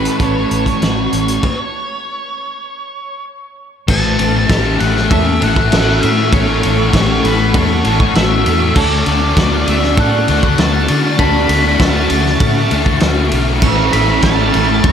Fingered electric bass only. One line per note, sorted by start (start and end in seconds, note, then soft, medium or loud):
0.20 0.44 A1 medium
0.51 0.75 A1 medium
0.82 1.06 A1 medium
1.13 1.37 A1 medium
3.89 4.16 A1 loud
4.20 4.47 A1 medium
4.50 4.77 A1 loud
4.81 5.08 A1 medium
5.11 5.38 E2 loud
5.42 5.69 A1 medium
5.73 6.00 A1 medium
6.04 6.30 A2 loud
6.33 6.60 A1 loud
6.65 6.91 A1 medium
6.94 7.21 A1 loud
7.24 7.51 A1 medium
7.54 7.81 E2 loud
7.85 8.12 A1 loud
8.15 8.43 A1 loud
8.46 8.73 E2 loud
8.76 9.03 D2 loud
9.07 9.34 D2 medium
9.37 9.64 D2 loud
9.68 9.95 D2 medium
9.98 10.25 A2 loud
10.29 10.56 D2 loud
10.58 10.86 D2 medium
10.90 11.17 D3 loud
11.18 11.46 D2 loud
11.49 11.77 D2 medium
11.80 12.07 D2 medium
12.11 12.38 D2 medium
12.41 12.68 A2 loud
12.72 12.99 D2 loud
13.02 13.29 D2 medium
13.33 13.60 B1 medium
13.62 13.90 A1 loud
13.94 14.21 A1 medium
14.23 14.50 A1 loud
14.55 14.82 A1 medium
14.84 14.92 E2 loud